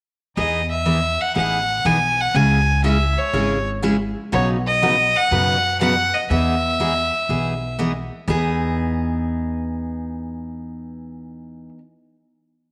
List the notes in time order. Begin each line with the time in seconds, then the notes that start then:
0.37 E2 E3 B3 D#4 G#4 D#5
0.71 E5
0.86 E3 B3 D#4 G#4
1.21 F#5
1.35 A1 E3 B3 D#4 G#4 F#5
1.85 B1 E3 B3 D#4 G#4 G#5
2.21 F#5
2.34 C#2 C#3 G#3 C#4 E4 G#4 G#5
2.84 C#3 G#3 C#4 E4 G#4 E5
3.18 C#5
3.33 G#1 C#3 G#3 C#4 E4 G#4
3.82 C#3 G#3 C#4 E4 G#4
4.32 B1 B2 C#3 F#3 B3 D#4 B4 C#5
4.67 D#5
4.82 B2 C#3 F#3 B3 D#4 B4
5.16 F#5
5.31 F#2 B2 C#3 F#3 B3 D#4 B4
5.81 B2 C#3 F#3 B3 D#4 B4 F#5
6.14 D#5
6.30 E2 E3 B3 D#4 G#4 E5
6.80 E3 B3 D#4 G#4
7.29 B1 E3 B3 D#4 G#4
7.79 E3 B3 D#4 G#4
8.28 E2 E3 B3 D#4 G#4